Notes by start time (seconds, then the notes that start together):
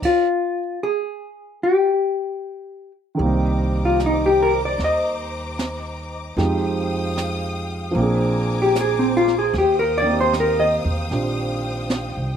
0.02 F4, kick, crash
0.83 G#4
1.63 G4
3.15 D#3 G3
3.19 C2 A#3 C5 D#5 A#5 D6, brush sweep
3.23 C4 D#4
3.85 F4
4.00 snare, hi-hat pedal
4.06 D#4
4.26 G4
4.43 A#4
4.65 D5
4.78 D#2, brush sweep, snare
4.84 D#5
5.59 snare, hi-hat pedal
6.37 F2 F3 G#3 C4 D#4 G4 F5 G5 D#6, brush sweep, snare
7.17 snare, hi-hat pedal
7.91 A#1 F3 A#3
7.96 C4 D4 C5 G#5 A#5 D6, brush sweep
8.02 G#4
8.62 G4
8.75 snare, hi-hat pedal
8.81 G#4
8.99 C4
9.17 F4
9.27 snare
9.39 G#4
9.53 D#2 F5 G5 D#6, brush sweep, snare
9.58 G4
9.79 A#4
9.98 D5
10.02 D#3 A#3
10.07 C4 D#4
10.12 G4
10.21 C5
10.33 snare, hi-hat pedal
10.40 A#4
10.60 D#5
10.85 E2
11.11 A#1 C4 D4 F4 G4, brush sweep, snare
11.90 snare, hi-hat pedal
12.17 C2